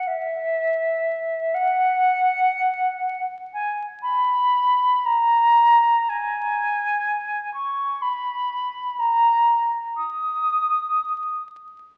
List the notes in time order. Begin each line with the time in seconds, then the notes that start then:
0.07 E5
1.54 F#5
3.53 G#5
4.02 B5
5.05 A#5
6.09 G#5
7.53 C#6
8.01 B5
8.99 A#5
9.97 D#6